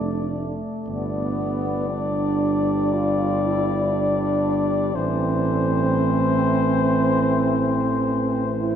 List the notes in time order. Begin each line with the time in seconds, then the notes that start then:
Already playing: F1 A3 D4 D5
0.86 G1 B3 D4 D5
1.89 G3 D4
2.93 F4
3.43 E4
3.93 D4
4.94 A1 E3 A3 C4 C5
8.59 E4